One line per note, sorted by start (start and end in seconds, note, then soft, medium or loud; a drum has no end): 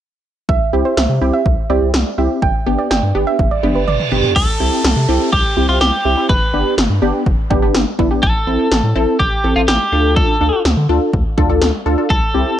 0.49 0.59 C2 loud
0.49 0.56 E5 loud
0.49 kick loud
0.73 0.83 C2 loud
0.73 0.95 C4 medium
0.73 0.95 E4 medium
0.73 0.95 G4 medium
0.85 0.92 C5 medium
0.97 1.07 C2 loud
0.97 1.04 E5 medium
0.97 snare loud
1.09 1.19 C3 loud
1.21 1.31 C2 loud
1.21 1.43 C4 medium
1.21 1.43 E4 medium
1.21 1.43 G4 medium
1.33 1.48 E5 medium
1.46 1.56 C2 loud
1.46 kick medium
1.70 1.80 C2 loud
1.70 1.91 C4 medium
1.70 1.91 E4 medium
1.70 1.91 G4 medium
1.70 1.77 D5 medium
1.82 1.92 C2 loud
1.94 2.04 C2 loud
1.94 snare loud
2.18 2.28 C2 medium
2.18 2.40 C4 medium
2.18 2.40 E4 medium
2.18 2.40 G4 medium
2.18 2.25 E5 medium
2.42 2.52 G1 loud
2.42 2.49 G5 medium
2.42 kick loud
2.66 2.77 G1 loud
2.66 2.88 B3 medium
2.66 2.88 D4 medium
2.66 2.88 G4 medium
2.79 2.86 D5 medium
2.91 3.01 G1 loud
2.91 2.98 G5 medium
2.91 snare loud
3.03 3.13 G2 medium
3.15 3.25 G1 loud
3.15 3.37 B3 medium
3.15 3.37 D4 medium
3.15 3.37 G4 medium
3.27 3.34 E5 medium
3.39 3.49 G1 loud
3.39 kick medium
3.39 high tom soft
3.39 reverse cymbal medium
3.51 3.58 D5 medium
3.63 3.73 G1 loud
3.63 3.85 B3 medium
3.63 3.85 D4 medium
3.63 3.85 G4 loud
3.63 mid tom medium
3.75 3.85 G1 medium
3.75 3.82 B4 medium
3.88 3.98 G1 loud
3.88 4.22 D5 medium
3.88 mid tom medium
4.00 mid tom medium
4.12 4.22 G1 loud
4.12 4.33 B3 medium
4.12 4.33 D4 medium
4.12 4.33 G4 medium
4.12 floor tom medium
4.24 floor tom medium
4.36 4.46 C2 loud
4.36 5.32 A4 loud
4.36 kick loud
4.36 crash medium
4.36 downlifter medium
4.60 4.70 C2 loud
4.60 4.82 C4 medium
4.60 4.82 E4 medium
4.60 4.82 G4 medium
4.84 4.94 C2 loud
4.84 snare loud
4.96 5.06 C3 loud
5.08 5.19 C2 loud
5.08 5.30 C4 medium
5.08 5.30 E4 medium
5.08 5.30 G4 loud
5.33 5.43 C2 loud
5.33 5.69 G4 medium
5.33 kick medium
5.57 5.67 C2 loud
5.57 5.68 C4 medium
5.57 5.68 E4 medium
5.57 5.68 G4 medium
5.69 5.79 C2 medium
5.69 5.91 C4 medium
5.69 5.91 E4 medium
5.69 5.81 F4 medium
5.69 5.91 G4 medium
5.81 5.91 C2 loud
5.81 6.26 G4 medium
5.81 snare loud
6.05 6.15 C2 loud
6.05 6.16 C4 medium
6.05 6.16 E4 medium
6.05 6.16 G4 medium
6.17 6.29 C4 medium
6.17 6.29 E4 medium
6.17 6.29 G4 medium
6.29 6.39 G1 loud
6.29 6.74 B4 loud
6.29 kick loud
6.54 6.64 G1 loud
6.54 6.75 B3 medium
6.54 6.75 D4 medium
6.54 6.75 G4 medium
6.78 6.88 G1 loud
6.78 snare loud
6.90 7.00 G2 loud
7.02 7.12 G1 loud
7.02 7.24 B3 medium
7.02 7.24 D4 medium
7.02 7.24 G4 loud
7.26 7.36 G1 loud
7.26 kick medium
7.50 7.61 G1 medium
7.50 7.61 B3 medium
7.50 7.61 D4 medium
7.50 7.61 G4 loud
7.50 kick medium
7.62 7.73 G1 medium
7.62 7.84 B3 medium
7.62 7.84 D4 medium
7.62 7.84 G4 medium
7.75 7.85 G1 loud
7.75 snare loud
7.99 8.09 G1 loud
7.99 8.10 B3 medium
7.99 8.10 D4 medium
7.99 8.10 E4 loud
7.99 kick medium
8.11 8.23 B3 medium
8.11 8.23 D4 medium
8.11 8.23 G4 medium
8.23 8.33 A1 loud
8.23 9.19 A4 loud
8.23 kick loud
8.47 8.57 A1 loud
8.47 8.69 C4 medium
8.47 8.69 E4 medium
8.47 8.69 A4 medium
8.71 8.81 A1 loud
8.71 snare loud
8.83 8.94 A2 medium
8.95 9.06 A1 loud
8.95 9.17 C4 medium
8.95 9.17 E4 medium
8.95 9.17 A4 loud
9.19 9.30 A1 loud
9.19 9.53 G4 loud
9.19 kick medium
9.44 9.54 A1 medium
9.44 9.55 C4 medium
9.44 9.55 E4 medium
9.44 9.55 A4 medium
9.56 9.66 A1 medium
9.56 9.78 C4 medium
9.56 9.78 E4 medium
9.56 9.61 F4 medium
9.56 9.78 A4 medium
9.68 9.78 A1 loud
9.68 10.16 G4 medium
9.68 snare loud
9.92 10.22 D2 medium
9.92 10.36 D4 medium
9.92 10.36 F4 medium
9.92 10.36 A4 medium
10.16 10.61 A4 medium
10.16 kick loud
10.41 10.51 D2 loud
10.41 10.62 D4 medium
10.41 10.62 F4 medium
10.41 10.62 A4 medium
10.65 10.75 D2 loud
10.65 snare loud
10.77 10.87 D3 loud
10.89 10.99 D2 loud
10.89 11.11 D4 medium
10.89 11.11 F4 medium
10.89 11.11 A4 loud
11.13 11.23 D2 loud
11.13 kick medium
11.38 11.48 D2 loud
11.38 11.48 D4 medium
11.38 11.48 F4 medium
11.38 11.48 A4 loud
11.38 kick medium
11.50 11.60 D2 medium
11.50 11.71 D4 medium
11.50 11.71 F4 medium
11.50 11.71 A4 medium
11.62 11.72 D2 loud
11.62 snare loud
11.86 11.96 D2 loud
11.86 11.97 D4 medium
11.86 11.97 F4 medium
11.86 11.97 A4 loud
11.98 12.10 D4 medium
11.98 12.10 F4 medium
11.98 12.10 A4 medium
12.10 12.20 C2 loud
12.10 12.60 A4 medium
12.10 kick loud
12.34 12.44 C2 loud
12.34 12.56 C4 medium
12.34 12.56 E4 medium
12.34 12.56 G4 medium